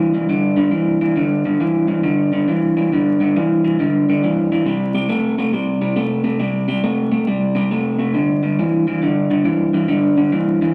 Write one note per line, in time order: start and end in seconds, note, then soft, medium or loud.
0.00 0.11 G2 medium
0.00 0.12 E3 loud
0.14 0.27 G2 medium
0.14 0.28 E3 medium
0.29 0.55 G2 medium
0.29 0.55 D3 medium
0.56 0.69 G2 medium
0.56 0.71 D3 medium
0.71 0.97 G2 medium
0.71 0.98 E3 medium
1.01 1.14 G2 medium
1.01 1.15 E3 medium
1.16 1.42 G2 medium
1.16 1.42 D3 medium
1.45 1.59 G2 medium
1.45 1.59 D3 medium
1.60 1.86 G2 medium
1.60 1.86 E3 loud
1.88 2.02 G2 medium
1.88 2.02 E3 medium
2.03 2.29 G2 medium
2.03 2.29 D3 medium
2.32 2.46 G2 medium
2.32 2.46 D3 medium
2.48 2.73 G2 medium
2.48 2.74 E3 medium
2.77 2.90 G2 medium
2.77 2.90 E3 medium
2.92 3.17 G2 medium
2.92 3.18 D3 medium
3.20 3.33 G2 medium
3.20 3.34 D3 medium
3.36 3.61 G2 medium
3.36 3.61 E3 loud
3.64 3.77 G2 medium
3.64 3.77 E3 medium
3.79 4.05 G2 medium
3.79 4.05 D3 medium
4.09 4.21 G2 medium
4.09 4.22 D3 medium
4.23 4.48 G2 medium
4.23 4.49 E3 medium
4.52 4.65 G2 medium
4.52 4.65 E3 medium
4.66 4.91 C3 medium
4.66 4.92 G3 medium
4.95 5.08 C3 medium
4.95 5.08 G3 medium
5.09 5.35 C3 medium
5.09 5.35 A3 loud
5.38 5.52 C3 medium
5.38 5.52 A3 medium
5.53 5.79 C3 medium
5.53 5.79 G3 medium
5.81 5.95 C3 medium
5.81 5.95 G3 medium
5.96 6.22 C3 medium
5.96 6.22 A3 medium
6.24 6.38 C3 medium
6.24 6.38 A3 medium
6.39 6.65 C3 medium
6.39 6.66 G3 medium
6.68 6.82 C3 medium
6.68 6.82 G3 medium
6.84 7.09 C3 medium
6.84 7.09 A3 loud
7.12 7.25 C3 medium
7.12 7.25 A3 medium
7.27 7.53 C3 medium
7.27 7.53 G3 medium
7.55 7.69 C3 medium
7.55 7.69 G3 loud
7.71 7.97 C3 medium
7.71 7.97 A3 loud
7.99 8.12 C3 medium
7.99 8.13 A3 medium
8.14 8.40 G2 medium
8.14 8.40 D3 medium
8.43 8.56 G2 medium
8.43 8.57 D3 medium
8.59 8.84 G2 loud
8.59 8.84 E3 loud
8.87 9.00 G2 medium
8.87 9.01 E3 medium
9.02 9.27 G2 medium
9.02 9.28 D3 medium
9.30 9.43 G2 medium
9.30 9.44 D3 medium
9.44 9.71 G2 medium
9.44 9.71 E3 medium
9.73 9.87 G2 medium
9.73 9.88 E3 medium
9.88 10.14 G2 medium
9.88 10.14 D3 medium
10.17 10.31 G2 medium
10.17 10.31 D3 medium
10.32 10.58 G2 loud
10.32 10.58 E3 medium
10.61 10.74 G2 medium
10.61 10.74 E3 medium